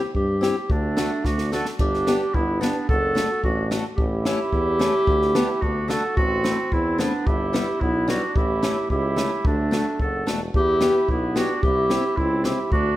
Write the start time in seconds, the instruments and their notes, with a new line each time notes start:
Already playing: clarinet G4
0.15 tuba G2, clarinet G4, kick
0.41 steel-string acoustic guitar C4 E4 G4, snare
0.70 tuba D2, trumpet A3, clarinet D4, kick
0.97 steel-string acoustic guitar A3 D4 F#4, snare
1.25 tuba D2, trumpet D4, clarinet F#4, kick, snare
1.38 snare
1.52 steel-string acoustic guitar A3 D4 F#4, trumpet F#4, clarinet A4, snare
1.66 snare
1.79 tuba G1, trumpet D4, clarinet G4, kick, splash
1.94 snare
2.07 steel-string acoustic guitar B3 D4 G4, snare
2.34 tuba G1, trumpet B3, clarinet E4, kick
2.60 steel-string acoustic guitar B3 D4 G4, trumpet B3, clarinet D4, snare
2.89 tuba F#1, trumpet F#4, clarinet A4, kick
3.15 steel-string acoustic guitar A3 D4 F#4, snare
3.44 tuba A1, trumpet D4, clarinet F#4, kick
3.71 steel-string acoustic guitar A3 D4 F#4, snare
3.97 tuba A1, trumpet E4, clarinet G4, kick
4.25 steel-string acoustic guitar A3 C#4 E4, snare
4.52 tuba E2, kick
4.79 steel-string acoustic guitar A3 C#4 E4, snare
5.07 tuba D2, kick
5.22 snare
5.35 steel-string acoustic guitar B3 D4 G4, snare
5.62 tuba D2, trumpet D4, clarinet F#4, kick
5.88 steel-string acoustic guitar A3 D4 F#4, trumpet F#4, clarinet A4, snare
6.16 tuba A1, trumpet C4, clarinet F#4, kick
6.44 steel-string acoustic guitar A3 C4 E4, snare
6.72 tuba E2, trumpet C4, clarinet E4, kick
6.98 steel-string acoustic guitar A3 C4 E4, trumpet B3, clarinet D4, snare
7.26 tuba G1, trumpet E4, clarinet G4, kick
7.53 steel-string acoustic guitar G3 B3 E4, snare
7.81 tuba B1, trumpet B3, clarinet E4, kick
8.08 steel-string acoustic guitar G3 B3 E4, trumpet D4, clarinet F#4, snare
8.35 tuba A1, trumpet E4, clarinet G4, kick
8.62 steel-string acoustic guitar A3 C#4 E4, snare
8.90 tuba C#2, trumpet E4, clarinet G4, kick
9.16 steel-string acoustic guitar A3 C#4 E4, snare
9.45 tuba D2, trumpet A3, clarinet D4, kick
9.71 steel-string acoustic guitar A3 D4 F#4, snare
9.99 tuba F#1, trumpet F#4, clarinet A4, kick
10.27 tuba E1, steel-string acoustic guitar A3 D4 F#4, snare
10.54 tuba E2, clarinet G4, kick
10.58 trumpet E4
10.80 steel-string acoustic guitar B3 E4 G4, snare
11.08 tuba B1, trumpet B3, clarinet E4, kick
11.36 steel-string acoustic guitar B3 E4 G4, trumpet D4, clarinet F#4, snare
11.63 tuba C2, trumpet E4, clarinet G4, kick
11.90 steel-string acoustic guitar C4 E4 G4, snare
12.17 tuba C#2, trumpet C4, clarinet E4, kick
12.44 steel-string acoustic guitar C4 E4 G4, trumpet E4, clarinet G4, snare
12.71 tuba D2, trumpet D4, clarinet F#4, kick